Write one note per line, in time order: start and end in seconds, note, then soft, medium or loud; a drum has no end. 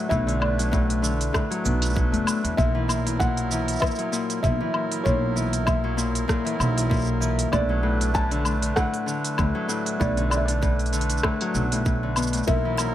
0.00 0.31 F#3 loud
0.00 2.54 A3 medium
0.00 2.54 D4 medium
0.00 2.54 B4 medium
0.09 1.28 B1 medium
0.09 0.31 A2 loud
0.09 0.42 E5 loud
0.09 kick loud
0.09 cabasa soft
0.27 0.47 D3 loud
0.27 open hi-hat soft
0.40 0.70 A2 medium
0.40 1.61 D5 medium
0.40 low woodblock medium
0.58 1.09 F#3 medium
0.58 open hi-hat soft
0.58 cabasa soft
0.72 1.09 A2 loud
0.72 kick loud
0.72 cabasa soft
0.90 open hi-hat soft
1.02 1.40 D3 loud
1.02 cabasa medium
1.21 open hi-hat medium
1.21 cabasa soft
1.33 1.71 A2 medium
1.33 kick loud
1.33 cross-stick medium
1.33 cabasa soft
1.33 low woodblock medium
1.50 1.94 F#3 loud
1.50 open hi-hat soft
1.64 2.13 B1 medium
1.64 2.32 B2 medium
1.64 cabasa medium
1.82 open hi-hat medium
1.82 cabasa soft
1.85 cabasa soft
1.90 cabasa soft
1.92 cabasa soft
1.95 2.63 F#3 medium
1.95 kick loud
1.95 cabasa soft
1.97 cabasa soft
2.12 2.23 F#1 medium
2.12 2.63 A3 medium
2.12 open hi-hat soft
2.26 2.42 A2 medium
2.26 cabasa medium
2.26 low woodblock medium
2.43 2.54 E2 medium
2.43 2.63 A2 medium
2.43 open hi-hat soft
2.57 3.75 B1 medium
2.57 2.87 A#2 loud
2.57 7.49 F#3 medium
2.57 7.49 E4 medium
2.57 7.49 A#4 medium
2.57 3.22 E5 loud
2.57 kick loud
2.57 cabasa soft
2.75 2.94 E3 loud
2.88 3.19 A#2 medium
2.88 cabasa medium
2.88 low woodblock medium
3.06 3.25 E3 medium
3.06 open hi-hat soft
3.06 cabasa soft
3.19 3.80 A#2 medium
3.19 3.84 F#5 loud
3.19 kick loud
3.19 cabasa soft
3.37 open hi-hat soft
3.51 3.87 E3 medium
3.51 cabasa medium
3.68 open hi-hat medium
3.68 cabasa soft
3.73 cabasa soft
3.76 cabasa soft
3.79 4.11 A#2 medium
3.79 4.41 E5 loud
3.79 kick loud
3.79 cross-stick medium
3.79 cabasa soft
3.79 low woodblock medium
3.83 cabasa soft
3.86 cabasa soft
3.91 cabasa soft
3.95 5.83 F#3 medium
3.95 open hi-hat soft
3.95 cabasa soft
4.12 4.41 A#2 loud
4.12 cabasa medium
4.30 open hi-hat medium
4.30 cabasa soft
4.43 4.56 B1 medium
4.43 4.73 A#2 loud
4.43 5.01 E5 medium
4.43 kick loud
4.43 cabasa soft
4.60 4.80 E3 loud
4.74 5.04 A#2 medium
4.74 low woodblock medium
4.92 5.11 E3 medium
4.92 open hi-hat medium
5.03 6.23 B1 medium
5.03 5.65 A#2 loud
5.03 5.68 C#5 loud
5.03 kick loud
5.03 cabasa soft
5.36 5.73 E3 loud
5.36 cabasa medium
5.53 open hi-hat medium
5.53 cabasa soft
5.66 5.96 A#2 medium
5.66 7.17 E5 medium
5.66 kick loud
5.66 cabasa soft
5.66 low woodblock medium
5.84 7.58 F#3 loud
5.97 6.27 A#2 loud
5.97 cabasa medium
6.15 open hi-hat medium
6.15 cabasa soft
6.28 6.58 A#2 loud
6.28 kick loud
6.28 cross-stick medium
6.28 cabasa soft
6.45 6.65 E3 loud
6.45 open hi-hat soft
6.59 7.46 B1 medium
6.59 6.88 A#2 medium
6.59 cabasa medium
6.59 low woodblock medium
6.76 6.96 E3 medium
6.76 open hi-hat medium
6.76 cabasa soft
6.89 7.58 A#2 loud
6.89 kick medium
6.89 cabasa soft
6.94 cabasa soft
6.96 cabasa soft
6.99 cabasa soft
7.01 cabasa soft
7.04 cabasa soft
7.07 cabasa soft
7.20 7.58 E3 medium
7.20 cabasa medium
7.39 open hi-hat medium
7.39 cabasa soft
7.52 8.70 B1 medium
7.52 7.82 A2 medium
7.52 12.44 A3 medium
7.52 12.44 D4 medium
7.52 12.44 B4 medium
7.52 8.16 D5 loud
7.52 kick loud
7.52 cabasa soft
7.52 low woodblock medium
7.69 8.35 F#3 loud
7.83 8.13 A2 medium
8.01 open hi-hat medium
8.01 cabasa soft
8.14 8.35 A2 medium
8.14 8.73 A5 loud
8.14 kick loud
8.14 cabasa soft
8.31 8.51 D3 loud
8.31 open hi-hat soft
8.44 8.66 A2 medium
8.44 cabasa medium
8.44 low woodblock medium
8.62 8.82 D3 medium
8.62 open hi-hat medium
8.62 cabasa soft
8.76 9.13 A2 loud
8.76 10.04 F#5 loud
8.76 kick loud
8.76 cross-stick medium
8.76 cabasa soft
8.94 open hi-hat soft
9.06 9.44 D3 loud
9.06 cabasa medium
9.25 open hi-hat medium
9.25 cabasa soft
9.37 9.51 D2 medium
9.37 9.67 A2 medium
9.37 kick loud
9.37 cabasa soft
9.37 low woodblock medium
9.55 10.21 F#3 loud
9.68 9.98 A2 medium
9.68 cabasa medium
9.86 open hi-hat medium
9.86 cabasa soft
10.00 11.18 B1 medium
10.00 10.21 A2 loud
10.00 10.29 D5 loud
10.00 kick loud
10.00 cabasa soft
10.17 10.37 D3 medium
10.17 open hi-hat soft
10.30 10.52 A2 medium
10.30 10.38 D5 medium
10.30 cabasa medium
10.30 low woodblock medium
10.37 10.46 E5 medium
10.46 10.67 D3 medium
10.46 11.50 D5 medium
10.46 open hi-hat medium
10.46 cabasa soft
10.61 10.98 A2 loud
10.61 kick loud
10.61 cabasa soft
10.79 open hi-hat soft
10.86 open hi-hat soft
10.93 11.29 D3 loud
10.93 open hi-hat soft
10.93 cabasa medium
11.01 open hi-hat soft
11.10 open hi-hat medium
11.10 cabasa soft
11.17 cabasa soft
11.23 11.60 A2 medium
11.23 kick loud
11.23 cross-stick medium
11.23 low woodblock medium
11.41 11.60 F#3 loud
11.41 open hi-hat soft
11.54 12.41 B1 medium
11.54 11.76 D3 medium
11.54 cabasa medium
11.72 11.84 A2 medium
11.72 open hi-hat medium
11.72 cabasa soft
11.85 12.07 A2 medium
11.85 kick loud
11.85 cabasa soft
12.03 12.22 D3 medium
12.16 12.38 B2 medium
12.16 cabasa medium
12.16 low woodblock medium
12.23 cabasa medium
12.27 cabasa soft
12.33 12.53 A2 medium
12.33 open hi-hat medium
12.33 cabasa soft
12.37 cabasa soft
12.43 cabasa soft
12.47 12.95 B1 medium
12.47 12.77 A#2 loud
12.47 12.95 F#3 medium
12.47 12.95 E4 medium
12.47 12.67 A#4 loud
12.47 12.95 A#4 loud
12.47 12.95 E5 loud
12.47 12.95 C#6 medium
12.47 kick loud
12.47 cabasa soft
12.65 12.84 E3 loud
12.77 12.95 A#2 medium
12.77 12.95 A#5 medium
12.77 cabasa medium
12.77 low woodblock medium